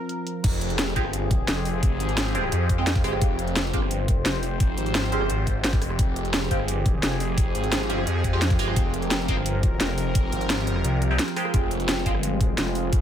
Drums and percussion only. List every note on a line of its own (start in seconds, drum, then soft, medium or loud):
0.09 closed hi-hat medium
0.27 closed hi-hat medium
0.44 kick loud
0.44 closed hi-hat loud
0.44 crash loud
0.61 closed hi-hat medium
0.70 closed hi-hat soft
0.79 snare loud
0.79 closed hi-hat loud
0.96 kick medium
0.96 closed hi-hat medium
1.05 cross-stick soft
1.13 closed hi-hat loud
1.31 kick loud
1.31 closed hi-hat medium
1.48 snare loud
1.48 closed hi-hat loud
1.57 cross-stick soft
1.65 open hi-hat medium
1.83 kick loud
1.83 closed hi-hat medium
2.00 closed hi-hat medium
2.09 closed hi-hat soft
2.17 snare loud
2.17 closed hi-hat loud
2.35 closed hi-hat medium
2.43 cross-stick medium
2.52 closed hi-hat medium
2.69 kick medium
2.69 closed hi-hat medium
2.87 snare loud
2.87 closed hi-hat medium
2.95 kick loud
2.95 cross-stick soft
2.95 closed hi-hat soft
3.04 cross-stick soft
3.04 open hi-hat medium
3.13 cross-stick soft
3.21 kick loud
3.21 closed hi-hat medium
3.39 closed hi-hat medium
3.48 closed hi-hat soft
3.56 snare loud
3.56 closed hi-hat medium
3.73 kick medium
3.73 closed hi-hat medium
3.82 cross-stick soft
3.91 closed hi-hat medium
4.08 kick loud
4.08 closed hi-hat medium
4.25 snare loud
4.25 closed hi-hat medium
4.34 cross-stick soft
4.43 open hi-hat medium
4.60 kick loud
4.60 closed hi-hat medium
4.78 closed hi-hat medium
4.86 closed hi-hat soft
4.95 snare loud
4.95 closed hi-hat medium
5.12 closed hi-hat medium
5.21 cross-stick soft
5.30 closed hi-hat medium
5.47 kick medium
5.47 closed hi-hat medium
5.64 snare loud
5.64 closed hi-hat medium
5.73 kick loud
5.73 cross-stick soft
5.73 closed hi-hat soft
5.82 cross-stick soft
5.82 open hi-hat medium
5.90 cross-stick soft
5.99 kick loud
5.99 closed hi-hat medium
6.16 closed hi-hat medium
6.25 closed hi-hat soft
6.34 snare loud
6.34 closed hi-hat medium
6.51 kick medium
6.51 closed hi-hat medium
6.60 cross-stick soft
6.68 closed hi-hat medium
6.86 kick loud
6.86 closed hi-hat medium
7.03 snare loud
7.03 closed hi-hat medium
7.12 cross-stick soft
7.20 open hi-hat medium
7.38 kick loud
7.38 closed hi-hat medium
7.55 closed hi-hat medium
7.64 closed hi-hat soft
7.72 snare loud
7.72 closed hi-hat loud
7.90 closed hi-hat medium
7.98 cross-stick soft
8.07 closed hi-hat medium
8.24 kick medium
8.24 closed hi-hat medium
8.42 snare loud
8.42 closed hi-hat medium
8.50 kick loud
8.50 cross-stick soft
8.50 closed hi-hat soft
8.59 cross-stick soft
8.59 open hi-hat medium
8.68 cross-stick soft
8.76 kick loud
8.76 closed hi-hat loud
8.94 closed hi-hat medium
9.02 closed hi-hat soft
9.11 snare loud
9.11 closed hi-hat loud
9.28 kick medium
9.28 closed hi-hat medium
9.37 cross-stick soft
9.46 closed hi-hat medium
9.63 kick loud
9.63 closed hi-hat medium
9.80 snare loud
9.80 closed hi-hat loud
9.89 cross-stick soft
9.98 open hi-hat medium
10.15 kick loud
10.15 closed hi-hat loud
10.32 closed hi-hat medium
10.41 closed hi-hat soft
10.50 snare loud
10.50 closed hi-hat loud
10.67 closed hi-hat medium
10.76 cross-stick soft
10.84 closed hi-hat loud
11.02 closed hi-hat medium
11.19 snare loud
11.19 closed hi-hat loud
11.28 cross-stick soft
11.28 closed hi-hat soft
11.36 cross-stick soft
11.36 open hi-hat medium
11.45 cross-stick soft
11.54 kick loud
11.54 closed hi-hat loud
11.71 closed hi-hat medium
11.80 closed hi-hat soft
11.89 snare loud
11.89 closed hi-hat loud
12.06 kick medium
12.06 closed hi-hat medium
12.15 cross-stick medium
12.23 closed hi-hat loud
12.41 kick loud
12.41 closed hi-hat medium
12.58 snare loud
12.58 closed hi-hat medium
12.67 cross-stick soft
12.75 open hi-hat medium
12.93 kick loud
12.93 closed hi-hat medium